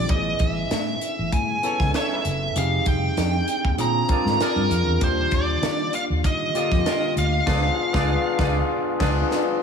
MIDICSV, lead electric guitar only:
0, 0, Header, 1, 2, 480
1, 0, Start_track
1, 0, Tempo, 614125
1, 77, Time_signature, 4, 2, 24, 8
1, 7524, End_track
2, 0, Start_track
2, 0, Title_t, "Lead electric guitar"
2, 0, Program_c, 0, 29
2, 0, Note_on_c, 0, 74, 84
2, 79, Note_off_c, 0, 74, 0
2, 82, Note_on_c, 0, 75, 89
2, 323, Note_on_c, 0, 76, 84
2, 327, Note_off_c, 0, 75, 0
2, 1038, Note_off_c, 0, 76, 0
2, 1041, Note_on_c, 0, 80, 99
2, 1488, Note_off_c, 0, 80, 0
2, 1532, Note_on_c, 0, 76, 90
2, 2014, Note_on_c, 0, 77, 91
2, 2019, Note_off_c, 0, 76, 0
2, 2248, Note_off_c, 0, 77, 0
2, 2252, Note_on_c, 0, 79, 95
2, 2934, Note_off_c, 0, 79, 0
2, 2975, Note_on_c, 0, 82, 99
2, 3454, Note_on_c, 0, 70, 81
2, 3461, Note_off_c, 0, 82, 0
2, 3935, Note_off_c, 0, 70, 0
2, 3938, Note_on_c, 0, 72, 100
2, 4152, Note_off_c, 0, 72, 0
2, 4175, Note_on_c, 0, 74, 98
2, 4648, Note_off_c, 0, 74, 0
2, 4651, Note_on_c, 0, 77, 86
2, 4714, Note_off_c, 0, 77, 0
2, 4892, Note_on_c, 0, 75, 102
2, 5574, Note_off_c, 0, 75, 0
2, 5615, Note_on_c, 0, 77, 89
2, 7494, Note_off_c, 0, 77, 0
2, 7524, End_track
0, 0, End_of_file